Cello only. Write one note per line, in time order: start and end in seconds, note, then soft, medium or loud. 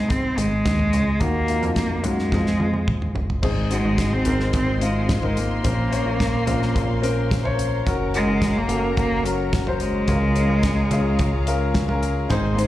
0.00 0.11 G#3 medium
0.10 0.39 C4 loud
0.37 1.21 G#3 loud
1.20 1.75 A#3 loud
1.76 2.05 A#3 medium
2.04 3.15 G#3 medium
3.72 4.15 G#3 medium
4.13 4.54 C4 medium
4.55 4.80 C4 medium
4.82 5.21 G#3 medium
5.24 5.40 G#3 medium
5.39 7.60 A#3 medium
8.15 8.59 G#3 loud
8.57 8.97 A#3 loud
8.97 9.25 A#3 loud
9.24 9.64 F#3 medium
9.64 9.82 F#3 medium
9.81 12.03 G#3 medium
12.53 12.61 A#3 medium
12.59 12.67 G#3 medium